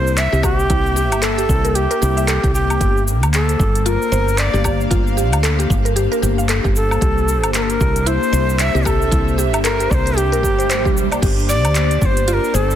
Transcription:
Already playing: fretless electric bass C2, analog synth pad A#3 D4 G4 C5, native american-style wooden flute C5, synth pluck C5
0.07 cabasa
0.17 native american-style wooden flute E5, clap, closed hi-hat, cabasa
0.28 analog synth pad E5
0.32 fretless electric bass C2, synth pluck G4, cabasa
0.43 native american-style wooden flute F#4, synth pluck G4, kick, cabasa, low woodblock
0.57 native american-style wooden flute G4, cabasa
0.70 fretless electric bass C2, synth pluck E4, kick, closed hi-hat, cabasa
0.86 cabasa
0.96 synth pluck G4, cabasa
1.12 fretless electric bass G1, synth pluck E5, closed hi-hat, cabasa, low woodblock
1.22 synth pluck A4, native american-style wooden flute A4, clap, closed hi-hat, cabasa
1.38 synth pluck G4, closed hi-hat, cabasa
1.49 fretless electric bass C2, kick, cabasa
1.64 synth pluck A#4, closed hi-hat, cabasa
1.75 native american-style wooden flute G4, synth pluck G4, closed hi-hat, cabasa
1.91 synth pluck A#4, closed hi-hat, cabasa
2.02 fretless electric bass C2, synth pluck G4, cabasa
2.17 synth pluck E5, closed hi-hat, cabasa
2.28 synth pluck A4, clap, closed hi-hat, cabasa
2.43 fretless electric bass C2, synth pluck G4, kick, closed hi-hat, cabasa
2.54 native american-style wooden flute G4, cabasa
2.70 closed hi-hat, cabasa, low woodblock
2.81 fretless electric bass G1, synth pluck G4, kick, closed hi-hat, cabasa
2.97 analog synth pad D4, cabasa
3.08 analog synth pad C5, cabasa
3.23 fretless electric bass D2, closed hi-hat, cabasa, low woodblock
3.34 native american-style wooden flute A4, clap, closed hi-hat, cabasa
3.49 closed hi-hat, cabasa
3.59 fretless electric bass G1, kick, cabasa
3.75 closed hi-hat, cabasa
3.82 synth pluck F4, analog synth pad G4, native american-style wooden flute A#4
3.86 closed hi-hat, cabasa
3.95 analog synth pad F5
4.02 cabasa
4.12 fretless electric bass G1, synth pluck C5, cabasa
4.28 cabasa
4.38 native american-style wooden flute D5, clap, closed hi-hat, cabasa
4.53 fretless electric bass G1, synth pluck G4, cabasa
4.64 synth pluck G4, kick, cabasa, low woodblock
4.81 cabasa
4.91 fretless electric bass G1, synth pluck F4, kick, closed hi-hat, cabasa
5.07 cabasa
5.17 synth pluck G4, cabasa
5.32 fretless electric bass D2, synth pluck F5, closed hi-hat, cabasa, low woodblock
5.43 synth pluck A4, clap, closed hi-hat, cabasa
5.59 synth pluck G4, closed hi-hat, cabasa
5.70 fretless electric bass G1, kick, cabasa
5.85 synth pluck A#4, closed hi-hat, cabasa
5.96 synth pluck G4, closed hi-hat, cabasa
6.12 synth pluck A#4, cabasa
6.22 fretless electric bass G1, synth pluck G4, cabasa
6.38 synth pluck F5, cabasa
6.49 synth pluck A4, clap, closed hi-hat, cabasa
6.64 fretless electric bass G1, synth pluck G4, kick, cabasa
6.76 native american-style wooden flute A4, cabasa
6.91 cabasa, low woodblock
7.01 fretless electric bass C2, synth pluck G4, kick, closed hi-hat, cabasa
7.18 cabasa
7.29 cabasa
7.44 fretless electric bass G1, closed hi-hat, cabasa, low woodblock
7.54 native american-style wooden flute A#4, clap, closed hi-hat, cabasa
7.62 native american-style wooden flute A4
7.69 native american-style wooden flute A#4, analog synth pad E5, closed hi-hat, cabasa
7.81 fretless electric bass C2, kick, cabasa
7.96 closed hi-hat, cabasa
8.06 synth pluck E4, native american-style wooden flute C5, closed hi-hat, cabasa
8.23 cabasa
8.33 fretless electric bass C2, synth pluck C5, cabasa
8.49 cabasa
8.59 native american-style wooden flute E5, clap, closed hi-hat, cabasa
8.75 fretless electric bass C2, synth pluck G4, cabasa
8.85 synth pluck G4, native american-style wooden flute A4, kick, cabasa, low woodblock
9.02 cabasa
9.12 fretless electric bass C2, synth pluck E4, kick, closed hi-hat, cabasa
9.28 cabasa
9.38 synth pluck G4, cabasa
9.53 fretless electric bass G1, synth pluck E5, closed hi-hat, cabasa, low woodblock
9.64 synth pluck A4, native american-style wooden flute A#4, clap, closed hi-hat, cabasa
9.79 synth pluck G4, closed hi-hat, cabasa
9.91 fretless electric bass C2, native american-style wooden flute C5 D5, kick, cabasa
10.06 synth pluck A#4, closed hi-hat, cabasa
10.17 synth pluck G4, native american-style wooden flute G4, closed hi-hat, swell, cabasa
10.32 synth pluck A#4, closed hi-hat, cabasa
10.43 fretless electric bass G1, synth pluck G4, kick, cabasa
10.59 synth pluck C5, closed hi-hat, cabasa
10.69 synth pluck C5, clap, closed hi-hat, cabasa
10.85 fretless electric bass C2, synth pluck G4, kick, cabasa
10.97 cabasa
11.11 synth pluck D5, closed hi-hat, cabasa, low woodblock
11.22 fretless electric bass G1, synth pluck G4, kick, closed hi-hat, crash, cabasa
11.39 cabasa
11.49 native american-style wooden flute D5, cabasa
11.64 fretless electric bass D2, closed hi-hat, cabasa, low woodblock
11.75 clap, closed hi-hat, cabasa
11.91 closed hi-hat, cabasa
12.02 fretless electric bass G1, native american-style wooden flute C5 D5, kick, cabasa
12.17 closed hi-hat, cabasa
12.28 synth pluck F4, native american-style wooden flute C5, closed hi-hat, cabasa
12.33 native american-style wooden flute A#4
12.44 cabasa
12.54 fretless electric bass G1, native american-style wooden flute A4, synth pluck C5, cabasa
12.71 cabasa

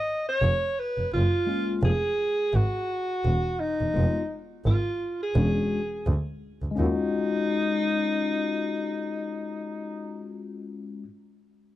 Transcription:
Already playing: alto saxophone D#5
0.29 alto saxophone C#5
0.42 double bass F1
0.79 alto saxophone B4
0.98 double bass F1
1.12 double bass F#1, alto saxophone F4
1.46 tine electric piano G#3 A#3 C#4 F4
1.83 double bass F1, alto saxophone G#4
2.54 double bass G#1, alto saxophone F#4
3.25 double bass E1
3.60 alto saxophone D#4
3.81 double bass E1
3.93 double bass F1, tine electric piano G#3 B3 D#4 F4
4.66 double bass G#1, alto saxophone F4
5.23 alto saxophone G#4
5.35 double bass E1, tine electric piano G#3 C#4 D4 F#4
6.06 double bass D2
6.62 double bass D2
6.71 tine electric piano G#3
6.75 double bass D#2, tine electric piano C#4 F4, alto saxophone D#4
6.83 tine electric piano F#4

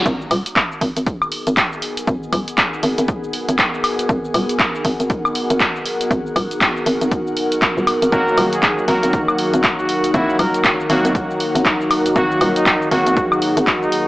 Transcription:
0.06 fm bass G#1, analog synth pad B3 F#4 A#4, ambient pad D#4, kick, closed hi-hat, shaker
0.21 shaker
0.31 fm bass D#1, open hi-hat, high woodblock
0.46 ambient pad G#4, closed hi-hat, shaker
0.56 kick, clap, closed hi-hat, shaker
0.69 ambient pad B3, shaker
0.81 fm bass G#1, kick, open hi-hat
0.97 fm bass G#1, closed hi-hat, shaker
1.06 kick, closed hi-hat, shaker
1.22 fm bass D#1, high woodblock, shaker
1.32 open hi-hat
1.47 fm bass G#1, ambient pad F#5, closed hi-hat, shaker
1.57 kick, clap, closed hi-hat, shaker
1.73 shaker
1.82 open hi-hat
1.97 closed hi-hat, shaker
2.07 fm bass G#1, kick, closed hi-hat, shaker
2.23 shaker
2.33 fm bass D#1, kick, open hi-hat, high woodblock
2.48 closed hi-hat, shaker
2.58 kick, clap, closed hi-hat, shaker
2.73 shaker
2.83 fm bass G#1, open hi-hat
2.98 fm bass G#1, closed hi-hat, shaker
3.08 kick, closed hi-hat, shaker
3.24 fm bass D#1, shaker
3.33 open hi-hat
3.49 fm bass G#1, closed hi-hat, shaker
3.59 kick, clap, closed hi-hat, shaker
3.74 shaker
3.84 open hi-hat, high woodblock
3.99 closed hi-hat, shaker
4.09 fm bass G#1, kick, closed hi-hat, shaker
4.25 shaker
4.34 fm bass D#1, open hi-hat, high woodblock
4.49 closed hi-hat, shaker
4.59 kick, clap, closed hi-hat, shaker
4.75 shaker
4.85 fm bass G#1, kick, open hi-hat
5.00 fm bass G#1, closed hi-hat, shaker
5.10 kick, closed hi-hat, shaker
5.25 fm bass D#1, high woodblock, shaker
5.35 open hi-hat
5.50 fm bass G#1, closed hi-hat, shaker
5.60 kick, clap, closed hi-hat, shaker
5.76 shaker
5.86 open hi-hat
6.01 closed hi-hat, shaker
6.11 fm bass G#1, kick, closed hi-hat, shaker
6.26 shaker
6.36 fm bass D#1, kick, open hi-hat, high woodblock
6.51 closed hi-hat, shaker
6.61 kick, clap, closed hi-hat, shaker
6.77 shaker
6.86 fm bass G#1, open hi-hat
7.01 fm bass G#1, closed hi-hat, shaker
7.11 kick, closed hi-hat, shaker
7.27 fm bass D#1, shaker
7.37 fm bass F#1, open hi-hat
7.52 closed hi-hat, shaker
7.62 kick, clap, closed hi-hat, shaker
7.77 fm bass D#1, shaker
7.87 open hi-hat, high woodblock
8.02 fm bass G#1, closed hi-hat, shaker
8.12 fm bass G#1, synth keys D#3 F#3 A#3 F#4, analog synth pad D#4, muted trumpet A#4, kick, closed hi-hat, shaker
8.28 shaker
8.38 fm bass D#1, open hi-hat, high woodblock
8.48 ambient pad F#4
8.53 muted trumpet G#4, closed hi-hat, shaker
8.63 kick, clap, closed hi-hat, shaker
8.78 shaker
8.88 fm bass G#1, synth keys D#3 F#3 A#3 F#4, muted trumpet A#4, kick, open hi-hat
9.03 fm bass G#1, closed hi-hat, shaker
9.13 kick, closed hi-hat, shaker
9.21 ambient pad A#4
9.28 fm bass D#1, high woodblock, shaker
9.38 open hi-hat
9.54 fm bass G#1, closed hi-hat, shaker
9.64 kick, clap, closed hi-hat, shaker
9.79 muted trumpet F#4, shaker
9.89 open hi-hat
10.04 closed hi-hat, shaker
10.14 fm bass G#1, synth keys D#3 F#3 A#3 F#4, muted trumpet E4, kick, closed hi-hat, shaker
10.30 shaker
10.39 fm bass D#1, muted trumpet A#4, kick, open hi-hat, high woodblock
10.54 closed hi-hat, shaker
10.64 kick, clap, closed hi-hat, shaker
10.80 shaker
10.90 fm bass G#1, synth keys D#3 F#3 A#3 F#4, open hi-hat
11.05 fm bass G#1, closed hi-hat, shaker
11.15 kick, closed hi-hat, shaker
11.30 fm bass D#1, shaker
11.40 open hi-hat
11.55 fm bass G#1, closed hi-hat, shaker
11.65 kick, clap, closed hi-hat, shaker
11.81 shaker
11.91 open hi-hat, high woodblock
12.06 closed hi-hat, shaker
12.16 fm bass G#1, synth keys D#3 F#3 A#3 F#4, muted trumpet F#4, analog synth pad G#4, kick, closed hi-hat, shaker
12.31 shaker
12.41 fm bass D#1, open hi-hat, high woodblock
12.56 muted trumpet D#4, closed hi-hat, shaker
12.66 kick, clap, closed hi-hat, shaker
12.82 shaker
12.91 fm bass G#1, synth keys D#3 F#3 A#3 F#4, muted trumpet F#4, kick, open hi-hat
13.07 fm bass G#1, closed hi-hat, shaker
13.17 kick, closed hi-hat, shaker
13.32 fm bass D#1, high woodblock, shaker
13.42 open hi-hat
13.57 fm bass G#1, closed hi-hat, shaker
13.67 kick, clap, closed hi-hat, shaker
13.82 muted trumpet D#4, shaker
13.92 open hi-hat

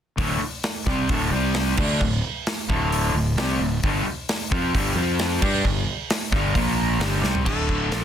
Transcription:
0.17 fingered electric bass D1, overdriven electric guitar D2 A2 D3, kick, open hi-hat
0.40 muted overdriven electric guitar stroke, muted fingered electric bass stroke
0.64 snare, open hi-hat
0.86 fingered electric bass C2, overdriven electric guitar C3 G3 C4, kick, snare
1.09 fingered electric bass D1, overdriven electric guitar D2 A2 D3, kick, open hi-hat
1.31 fingered electric bass C2, overdriven electric guitar C3 G3 C4
1.54 snare, open hi-hat
1.77 fingered electric bass D2, overdriven electric guitar D3 A3 D4, kick, crash
2.00 fingered electric bass D1, overdriven electric guitar D2 A2, kick
2.47 snare, open hi-hat
2.69 fingered electric bass D1, overdriven electric guitar D2 A2 D3, kick
2.92 open hi-hat
3.14 fingered electric bass D1, overdriven electric guitar D2 A2
3.36 fingered electric bass C2, overdriven electric guitar C3 G3 C4, snare, open hi-hat
3.58 fingered electric bass D1, overdriven electric guitar D2 A2
3.83 fingered electric bass G1, overdriven electric guitar G2 D3 G3, kick, open hi-hat
4.05 muted fingered electric bass stroke, muted overdriven electric guitar stroke
4.29 snare, open hi-hat
4.51 fingered electric bass F2, overdriven electric guitar F3 C4 F4, kick
4.74 fingered electric bass G1, overdriven electric guitar G2 D3 G3, kick, open hi-hat
4.95 fingered electric bass F2, overdriven electric guitar F3 C4 F4
5.19 snare, open hi-hat
5.42 fingered electric bass G2, overdriven electric guitar G3 D4 G4, kick, crash
5.64 fingered electric bass G1, overdriven electric guitar G2 D3, kick
6.10 snare, open hi-hat
6.32 fingered electric bass G1, overdriven electric guitar G2 D3 G3, kick, snare
6.54 fingered electric bass A#1, overdriven electric guitar A#2 F3 A#3, kick, open hi-hat
6.99 fingered electric bass G1, overdriven electric guitar G2 D3 G3, snare, open hi-hat
7.22 fingered electric bass C2, overdriven electric guitar C3 G3 C4, snare
7.35 floor tom
7.44 fingered electric bass D1, overdriven electric guitar D2 A2 D3, lead electric guitar A4, kick, crash
7.69 kick
7.90 fingered electric bass A#1, overdriven electric guitar A#2 F3 A#3, snare, open hi-hat

